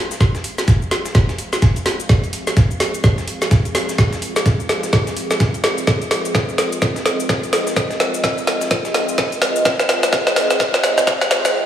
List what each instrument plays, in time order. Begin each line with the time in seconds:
Already playing: analog synth pad C4 F4 G#4 F5
0.11 snare, closed hi-hat, shaker
0.21 kick, snare, closed hi-hat, shaker
0.35 snare, closed hi-hat, shaker
0.44 closed hi-hat, open hi-hat
0.58 snare, closed hi-hat, shaker
0.68 kick, snare, closed hi-hat, shaker
0.82 shaker
0.91 snare, closed hi-hat, open hi-hat
1.05 snare, closed hi-hat, shaker
1.15 kick, snare, closed hi-hat, shaker
1.29 snare, closed hi-hat, shaker
1.38 closed hi-hat, open hi-hat
1.53 snare, shaker
1.62 kick, snare, closed hi-hat, shaker
1.76 closed hi-hat, shaker
1.86 snare, closed hi-hat, open hi-hat
2.00 closed hi-hat, shaker
2.09 kick, snare, closed hi-hat, shaker
2.24 closed hi-hat, shaker
2.33 closed hi-hat, open hi-hat
2.47 snare, closed hi-hat, shaker
2.57 kick, snare, closed hi-hat, shaker
2.71 shaker
2.80 snare, closed hi-hat, open hi-hat
2.94 closed hi-hat, shaker
3.04 kick, snare, closed hi-hat, shaker
3.18 snare, closed hi-hat, shaker
3.28 closed hi-hat, open hi-hat
3.42 snare, shaker
3.51 kick, snare, closed hi-hat, shaker
3.65 closed hi-hat, shaker
3.75 snare, closed hi-hat, open hi-hat
3.89 snare, closed hi-hat, shaker
3.98 kick, snare, closed hi-hat, shaker
4.13 snare, closed hi-hat, shaker
4.22 closed hi-hat, open hi-hat
4.36 snare, closed hi-hat, shaker
4.46 kick, snare, closed hi-hat, shaker
4.60 shaker
4.69 snare, closed hi-hat, open hi-hat
4.83 snare, closed hi-hat, shaker
4.93 kick, snare, closed hi-hat, shaker
5.07 snare, closed hi-hat, shaker
5.17 closed hi-hat, open hi-hat
5.31 snare, shaker
5.40 kick, snare, closed hi-hat, shaker
5.54 closed hi-hat, shaker
5.64 snare, closed hi-hat, open hi-hat
5.78 closed hi-hat, shaker
5.87 analog synth pad D#5, kick, snare, closed hi-hat, shaker
6.02 closed hi-hat, shaker
6.11 snare, closed hi-hat, open hi-hat
6.25 closed hi-hat, shaker
6.35 kick, snare, closed hi-hat, shaker
6.49 shaker
6.58 snare, closed hi-hat, open hi-hat
6.72 closed hi-hat, shaker
6.82 kick, snare, closed hi-hat, shaker
6.96 snare, closed hi-hat, shaker
7.06 snare, closed hi-hat, open hi-hat
7.20 shaker
7.29 kick, snare, closed hi-hat, shaker
7.43 closed hi-hat, shaker
7.53 snare, closed hi-hat, open hi-hat
7.67 snare, closed hi-hat, shaker
7.76 kick, snare, closed hi-hat, shaker
7.91 snare, closed hi-hat, shaker
8.00 snare, closed hi-hat, open hi-hat
8.14 closed hi-hat, shaker
8.24 kick, snare, closed hi-hat, shaker
8.38 shaker
8.47 snare, closed hi-hat, open hi-hat
8.61 snare, closed hi-hat, shaker
8.71 kick, snare, closed hi-hat, shaker
8.85 snare, closed hi-hat, shaker
8.94 snare, closed hi-hat, open hi-hat
9.09 shaker
9.18 kick, snare, closed hi-hat, shaker
9.32 closed hi-hat, shaker
9.42 snare, closed hi-hat, open hi-hat
9.56 closed hi-hat, shaker
9.65 kick, snare, closed hi-hat, shaker
9.80 snare, closed hi-hat, shaker
9.89 snare, closed hi-hat, open hi-hat
10.03 snare, closed hi-hat, shaker
10.13 kick, snare, closed hi-hat, shaker
10.27 snare, shaker
10.36 snare, closed hi-hat, open hi-hat
10.51 snare, closed hi-hat, shaker
10.60 kick, snare, closed hi-hat, shaker
10.74 snare, closed hi-hat, shaker
10.84 snare, closed hi-hat, open hi-hat
10.98 snare, shaker
11.07 kick, snare, closed hi-hat, shaker
11.21 snare, closed hi-hat, shaker
11.31 snare, closed hi-hat, open hi-hat
11.45 snare, closed hi-hat, shaker